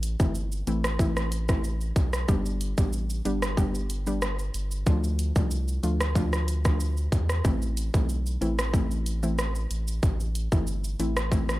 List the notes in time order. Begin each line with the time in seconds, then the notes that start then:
Already playing: A1
0.03 closed hi-hat, shaker
0.20 G1 E3 A3 C4 E4, kick, shaker
0.35 shaker
0.52 shaker
0.67 A1 E3 A3 C4 E4, closed hi-hat, shaker
0.84 cross-stick, shaker
0.99 E3 A3 C4 E4, kick, shaker
1.17 cross-stick, shaker
1.32 closed hi-hat, shaker
1.49 E3 A3 C4 E4, kick, cross-stick, shaker
1.64 shaker
1.81 shaker
1.96 B1, kick, closed hi-hat, shaker
2.13 cross-stick, shaker
2.28 G1 G3 B3 D4 G4, kick, shaker
2.46 shaker
2.61 closed hi-hat, shaker
2.78 A1 G3 B3 D4 G4, kick, shaker
2.93 shaker
3.10 shaker
3.25 G1 G3 B3 D4 G4, closed hi-hat, shaker
3.42 cross-stick, shaker
3.57 G3 B3 D4 G4, kick, shaker
3.75 shaker
3.90 closed hi-hat, shaker
4.07 G3 B3 D4 G4, shaker
4.22 cross-stick, shaker
4.39 shaker
4.54 G1, closed hi-hat, shaker
4.71 shaker
4.86 D2 F3 A3 D4 F4, kick, shaker
5.04 shaker
5.19 closed hi-hat, shaker
5.36 C2 F3 A3 D4 F4, kick, shaker
5.51 shaker
5.68 shaker
5.83 D2 F3 A3 D4 F4, closed hi-hat, shaker
6.01 cross-stick, shaker
6.15 F3 A3 D4 F4, kick, shaker
6.33 cross-stick, shaker
6.48 closed hi-hat, shaker
6.65 F3 A3 D4 F4, kick, cross-stick, shaker
6.80 shaker
6.97 shaker
7.12 E2, kick, closed hi-hat, shaker
7.29 cross-stick, shaker
7.44 A1 E3 A3 C4 E4, kick, shaker
7.62 shaker
7.77 closed hi-hat, shaker
7.94 B1 E3 A3 C4 E4, kick, shaker
8.09 shaker
8.26 shaker
8.41 A1 E3 A3 C4 E4, closed hi-hat, shaker
8.59 cross-stick, shaker
8.73 E3 A3 C4 E4, kick, shaker
8.91 shaker
9.06 closed hi-hat, shaker
9.23 E3 A3 C4 E4, shaker
9.38 cross-stick, shaker
9.55 shaker
9.71 A1, closed hi-hat, shaker
9.88 shaker
10.03 A1, kick, shaker
10.20 shaker
10.35 closed hi-hat, shaker
10.52 G1 E3 A3 C4 E4, kick, shaker
10.67 shaker
10.84 shaker
10.99 A1 E3 A3 C4 E4, closed hi-hat, shaker
11.17 cross-stick, shaker
11.32 E3 A3 C4 E4, kick, shaker
11.49 cross-stick, shaker